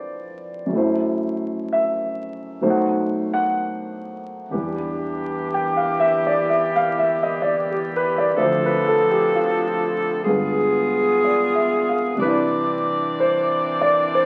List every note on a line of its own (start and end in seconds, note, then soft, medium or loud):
0.00 0.73 F2 soft
0.00 0.73 F3 soft
0.00 0.73 G3 soft
0.00 0.73 D4 soft
0.00 0.73 E4 soft
0.00 0.74 G4 soft
0.00 0.75 A4 soft
0.00 0.74 B4 soft
0.00 0.74 C5 medium
0.00 0.73 D5 medium
0.66 2.60 F#2 soft
0.66 2.61 F#3 soft
0.73 2.61 A3 soft
0.73 2.64 E4 soft
0.78 2.61 C5 soft
1.73 2.61 E5 medium
2.61 4.53 B2 soft
2.61 4.53 F#3 soft
2.61 4.54 A3 soft
2.61 4.54 D#4 soft
2.61 4.54 C5 medium
2.70 3.29 F#5 medium
3.33 3.50 F#5 medium
4.49 8.34 E2 soft
4.49 8.29 E3 medium
4.49 8.30 B3 medium
4.49 6.41 D4 medium
4.49 8.29 G4 medium
4.53 8.35 E3 soft
4.53 8.36 G3 soft
4.53 8.36 D4 soft
4.53 7.95 B4 soft
5.54 5.83 G5 medium
5.77 6.10 F5 medium
6.00 6.21 E5 medium
6.27 6.43 D5 medium
6.40 8.31 E4 medium
6.50 6.79 E5 medium
6.76 7.08 F5 medium
6.98 7.19 E5 medium
7.23 7.39 D#5 medium
7.42 7.72 D5 medium
7.71 8.03 G4 soft
7.96 8.15 B4 medium
8.18 8.34 D5 medium
8.33 10.27 D2 soft
8.33 10.24 F3 medium
8.33 10.27 F3 soft
8.33 10.23 C4 medium
8.33 10.23 D4 medium
8.33 10.23 A4 medium
8.37 10.25 D3 soft
8.37 8.41 C5 soft
8.37 10.27 E5 soft
8.43 8.70 C5 medium
8.66 8.98 B4 medium
8.87 9.08 A4 medium
9.11 9.28 G4 medium
9.35 10.24 F4 medium
10.23 12.17 G2 soft
10.23 12.14 B3 medium
10.23 12.14 F4 medium
10.23 12.13 G#4 medium
10.27 12.17 D3 soft
10.27 12.18 G#3 soft
10.27 12.18 F4 soft
10.27 12.18 B4 soft
11.25 11.84 D5 soft
11.55 12.04 E5 soft
11.89 12.37 F5 soft
12.15 14.26 C3 soft
12.15 14.26 E3 medium
12.15 14.26 G3 soft
12.15 14.26 D4 medium
12.15 14.26 D5 medium
12.19 14.26 C4 medium
12.19 14.26 D4 soft
12.19 13.11 B4 medium
12.24 14.26 E4 soft
12.24 13.80 D5 soft
13.20 13.76 C5 medium
13.81 14.10 D5 medium
14.15 14.26 C5 medium